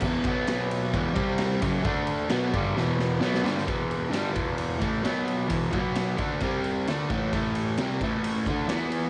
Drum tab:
CC |x---------------|----------------|----------------|----------------|
RD |--x-x-x-x-x-x-x-|x-x-x-x---------|x-x-x-x-x-x-x-x-|x-x-x-x-x-x-x-x-|
SD |----o-------o---|----o---o-o-oooo|----o-------o---|----o-------o---|
BD |o-o-----o-o---o-|o-----o---------|o-----o---o-----|o-o---o-o-----o-|

CC |----------------|
RD |x-x-x-x-x-x-x-x-|
SD |----o-------o---|
BD |o-----o---o-----|